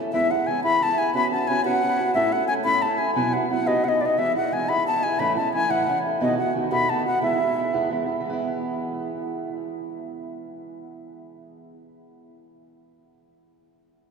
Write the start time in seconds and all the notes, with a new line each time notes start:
Already playing: E4 A4
0.00 C#4
0.12 E3 G#3 B3 E4 E5
0.31 G#3 B3 E4 F#5
0.47 E3 G#3 B3 E4 G#5
0.64 E3 G#3 B3 E4 B5
0.81 E3 G#3 B3 E4 A5
0.97 G#3 B3 E4 G#5
1.14 B3 C#4 F#4 B4 B5
1.32 C#4 F#4 B4 A5
1.47 B3 C#4 F#4 B4 G#5
1.65 B3 C#4 F#4 B4 F#5
1.82 B3 C#4 F#4 B4
1.99 C#4 F#4 B4
2.14 A2 A3 C#4 E4 A4 E5
2.32 C#4 E4 A4 F#5
2.48 A3 C#4 E4 A4 G#5
2.65 A2 A3 C#4 E4 A4 B5
2.82 A3 C#4 E4 A4 A5
2.98 E4 A4 G#5
3.02 C#4
3.15 B2 F#3 B3 E4 F#4 B4 G#5
3.33 B3 E4 F#4 B4 F#5
3.50 B3 E4 F#4 B4 F#5
3.67 B3 D#4 F#4 B4 D#5
3.84 B3 D#4 F#4 B4 F#5
3.89 D#5
4.01 D#4 F#4 B4 D5
4.06 D#5
4.17 E3 G#3 B3 E4 E5
4.35 G#3 B3 E4 F#5
4.52 E3 G#3 B3 E4 G#5
4.68 E3 G#3 B3 E4 B5
4.86 E3 G#3 B3 E4 A5
5.03 G#3 B3 E4 G#5
5.19 A2 E3 A3 C#4 E4 B5
5.37 A3 C#4 E4 A5
5.53 E3 A3 C#4 E4 G#5
5.69 A2 E3 A3 C#4 E4 F#5
5.87 E3 A3 C#4 E4
6.04 A3 C#4 E4
6.21 B2 D#3 A3 B3 F#4 D#5
6.38 A3 B3 F#4 F#5
6.54 D#3 A3 B3 F#4
6.71 B2 D#3 A3 B3 F#4 B5
6.88 D#3 A3 B3 F#4 A5
7.05 A3 B3 F#4 F#5
7.21 E3 G#3 B3 E4 E5
7.40 G#3 B3 E4
7.56 E3 G#3 B3 E4
7.73 E3 G#3 B3 E4
7.89 E3 G#3 B3 E4
8.06 G#3 B3 E4
8.21 E3
8.25 G#3
8.29 B3 E4